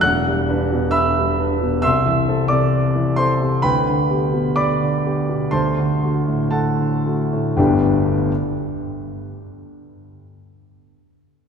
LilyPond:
<<
  \new Staff \with { instrumentName = "Grand piano" } { \time 4/4 \key d \mixolydian \tempo 4 = 62 <fis'' fis'''>4 <e'' b'' e'''>4 <e'' c''' e'''>8. <d'' d'''>8. <c'' c'''>8 | <b' g'' b''>4 <d'' b'' d'''>4 <c'' a'' c'''>4 <a' fis'' a''>4 | <g,, d, g b d' g' g''>8 r2. r8 | }
  \new Staff \with { instrumentName = "Grand piano" } { \clef bass \time 4/4 \key d \mixolydian <e,, e,>16 g16 <d' b'>16 b,8 g16 <d' b'>16 b,16 c,16 e16 <c' a'>16 c8 e16 <c' a'>16 c16 | d,16 d16 <b g'>16 b,8 d16 <b g'>16 b,16 d,16 d16 <a fis'>16 a,8 d16 <a fis'>16 a,16 | r1 | }
>>